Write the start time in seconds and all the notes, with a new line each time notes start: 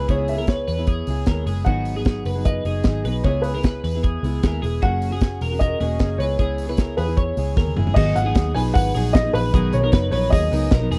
0.08 C#2 C#3 G#3 B3 E4 G#4 C#5, kick, closed hi-hat
0.28 E5, open hi-hat
0.38 B3 E4 G#4 A#4
0.47 B4 C#5, kick, snare, closed hi-hat
0.68 E2 B4, open hi-hat
0.78 B3 E4 G#4
0.87 G#4, kick, closed hi-hat
1.07 C#2 G#3 B3 E4 G#4, open hi-hat
1.26 D#2 G#3 B3 E4 G#4 A#4, kick, snare, closed hi-hat
1.46 F#1 G#3 B3 E4 G#4, open hi-hat
1.65 G#1 G#2 D#3 F#3 B3 D#4 F#4 G#4 F#5, kick, closed hi-hat
1.85 open hi-hat
1.96 F#3 B3 D#4 G#4
2.05 kick, snare, closed hi-hat
2.25 F#1 B4, open hi-hat
2.35 F#3 B3 D#4 G#4
2.45 B4 D#5, kick, closed hi-hat
2.65 F#1 F#3 B3 D#4 G#4, open hi-hat
2.84 G#1 F#3 B3 D#4, kick, snare, closed hi-hat
2.88 G#4
3.05 B1 F#3 B3 D#4 B4, open hi-hat
3.09 G#4
3.24 C#2 C#3 G#3 B3 E4 G#4 C#5, kick, closed hi-hat
3.42 B4, open hi-hat
3.55 B3 E4 G#4 A#4
3.63 B4, kick, snare, closed hi-hat
3.84 E2 B4, open hi-hat
3.95 B3 E4 G#4
4.03 G#4, kick, closed hi-hat
4.23 C#2 G#3 B3 E4 G#4, open hi-hat
4.43 D#2 G#3 B3 E4 A#4, kick, snare, closed hi-hat
4.47 G#4
4.62 E1 G#3 B3 E4 G#4, open hi-hat
4.82 F#1 F#3 A#3 C#4 F#4 G#4 F#5, kick, closed hi-hat
5.02 open hi-hat
5.11 C#4 F#4 G#4
5.21 kick, snare, closed hi-hat
5.41 E1 A#4, open hi-hat
5.51 C#4 F#4 G#4
5.59 A#4 D#5, kick, closed hi-hat
5.80 E1 A#3 C#4 F#4 G#4, open hi-hat
5.99 F#1 A#3 C#4 F#4 G#4, kick, snare, closed hi-hat
6.18 C#2 G#3 B3 E4 G#4 B4 C#5, open hi-hat
6.38 C#2 C#3 G#3 B3 E4 G#4, kick, closed hi-hat
6.58 open hi-hat
6.67 B3 E4 G#4 B4
6.77 A#4, kick, snare, closed hi-hat
6.97 E2 G#4 B4, open hi-hat
7.06 B3 E4 G#4
7.17 C#5, kick, closed hi-hat
7.36 C#2 G#3 B3 E4 G#4, open hi-hat
7.56 D#2 G#3 B3 E4 G#4 A#4, kick, snare
7.67 high tom
7.76 F#1 G#3 B3 E4 G#4, mid tom
7.87 floor tom
7.94 G#1 G#2 D#3 F#3 B3 D#4 F#4 G#4 D#5, kick, crash
8.15 G#1 F#5, hi-hat pedal, open hi-hat
8.25 F#3 B3 D#4 G#4
8.35 D#2, kick, snare, hi-hat pedal, open hi-hat
8.55 B1 F#3 B3 D#4 G#4 B4 G#5, hi-hat pedal, open hi-hat
8.74 G#1 B4 F#5, kick, hi-hat pedal, open hi-hat
8.94 A#1 F#3 B3 D#4 G#4, hi-hat pedal, open hi-hat
9.13 F#3 B3 D#4 G#4 D#5, kick, snare, hi-hat pedal, open hi-hat
9.23 F#3 B3 D#4 G#4
9.33 A#1 B4, hi-hat pedal, open hi-hat
9.53 B1 B2 D#3 F#3 B3 D#4 G#4 A#4, kick, hi-hat pedal, open hi-hat
9.73 B1 C#5, hi-hat pedal, open hi-hat
9.80 F#3 B3 D#4 A#4
9.92 F#1 B4, kick, snare, hi-hat pedal, open hi-hat
10.11 A#1 F#3 B3 D#4 A#4 B4 C#5, hi-hat pedal, open hi-hat
10.30 D#2 G#4 D#5, kick, hi-hat pedal, open hi-hat
10.51 C#2 F#3 B3 D#4 A#4, hi-hat pedal, open hi-hat
10.70 B1 F#3 B3 D#4 A#4, kick, snare, hi-hat pedal, open hi-hat
10.80 F#3 B3 D#4 A#4
10.91 E1 G#4, hi-hat pedal, open hi-hat